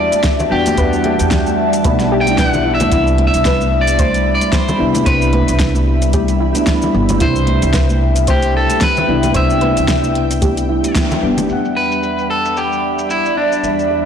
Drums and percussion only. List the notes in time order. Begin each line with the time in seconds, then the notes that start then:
0.12 closed hi-hat, high conga, shaker
0.24 kick, snare, closed hi-hat, shaker
0.39 low conga, shaker
0.66 closed hi-hat, high conga, low conga, shaker
0.77 kick, closed hi-hat, shaker
0.93 shaker
1.04 closed hi-hat, high conga
1.19 closed hi-hat, shaker
1.31 kick, snare, closed hi-hat, shaker
1.46 high conga, shaker
1.73 closed hi-hat, shaker
1.84 kick, closed hi-hat, high conga, low conga, shaker
2.00 snare, closed hi-hat, shaker
2.26 closed hi-hat, high conga, shaker
2.38 kick, snare, closed hi-hat, shaker
2.53 low conga, shaker
2.80 closed hi-hat, high conga, low conga, shaker
2.92 kick, closed hi-hat, shaker
3.07 shaker
3.18 closed hi-hat, high conga
3.34 closed hi-hat, shaker
3.45 kick, snare, closed hi-hat, shaker
3.61 high conga, shaker
3.87 closed hi-hat, shaker
3.99 kick, closed hi-hat, high conga, low conga, shaker
4.14 closed hi-hat, shaker
4.41 closed hi-hat, high conga, shaker
4.53 kick, snare, closed hi-hat, shaker
4.68 low conga, shaker
4.94 closed hi-hat, high conga, low conga, shaker
5.06 kick, closed hi-hat, shaker
5.22 shaker
5.33 closed hi-hat, high conga
5.48 closed hi-hat, shaker
5.60 kick, snare, closed hi-hat, shaker
5.75 high conga, shaker
6.02 closed hi-hat, shaker
6.13 kick, closed hi-hat, high conga, low conga, shaker
6.28 closed hi-hat, shaker
6.55 closed hi-hat, high conga, shaker
6.67 kick, snare, closed hi-hat, shaker
6.82 low conga, shaker
7.09 closed hi-hat, high conga, low conga, shaker
7.20 kick, closed hi-hat, shaker
7.36 shaker
7.47 closed hi-hat, high conga
7.62 closed hi-hat, shaker
7.74 kick, snare, closed hi-hat, shaker
7.89 high conga, shaker
8.16 closed hi-hat, shaker
8.27 kick, closed hi-hat, high conga, low conga, shaker
8.42 closed hi-hat, shaker
8.70 closed hi-hat, high conga, shaker
8.81 kick, snare, closed hi-hat, shaker
8.97 low conga, shaker
9.23 closed hi-hat, high conga, low conga, shaker
9.34 kick, closed hi-hat, shaker
9.50 shaker
9.61 closed hi-hat, high conga
9.77 closed hi-hat, shaker
9.88 kick, snare, closed hi-hat, shaker
10.04 high conga, shaker
10.15 closed hi-hat
10.31 closed hi-hat, shaker
10.42 kick, closed hi-hat, high conga, low conga, shaker
10.57 closed hi-hat, shaker
10.84 closed hi-hat, high conga, shaker
10.95 kick, snare, closed hi-hat, shaker
11.11 low conga, shaker
11.38 closed hi-hat, high conga, low conga, shaker
11.49 shaker
11.65 shaker
11.92 shaker
12.03 shaker
12.19 shaker
12.45 shaker
12.57 shaker
12.72 shaker
12.99 shaker
13.10 shaker
13.26 shaker
13.52 shaker
13.64 shaker
13.79 shaker